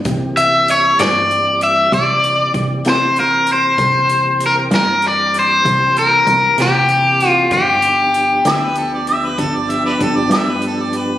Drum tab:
HH |xxxxxxxxxxxx|xxxxxxxxxxxx|xxxxxxxxxxxx|
SD |---o-----o--|---o-----o-o|---o-----o--|
BD |o-----o-o---|o-----o-o---|o-----o-o---|